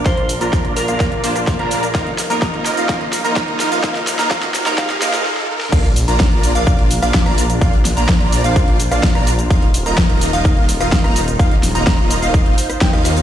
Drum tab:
CC |----------------|----------------|----------------|x---------------|
HH |xxoxxxoxxxoxxxox|xxoxxxoxxxoxxxox|xxoxxxoxxxox----|xxoxxxoxxxoxxxox|
SH |x-xxx-xxx-xxx-xx|x-xxx-xxx-xxx-xx|x-xxx-xxx-xx----|x-xxx-xxx-xxx-xx|
SD |o---o---o--ror--|o-o-o-o-o-o-o-o-|oooooooooooooo-o|----o------ror--|
BD |o---o---o---o---|o---o---o---o---|o---o---o-------|o---o---o---o---|

CC |----------------|----------------|----------------|
HH |xxoxxxoxxxoxxxox|xxoxxxoxxxoxxxox|xxoxxxoxxxoxxxox|
SH |x-xxx-xxx-xxx-xx|x-xxx-xxx-xxx-xx|x-xxx-xxx-xxx-xx|
SD |--o-o------ror--|----o------ror--|--o-o------rorr-|
BD |o---o---o---o---|o---o---o---o---|o---o---o---o---|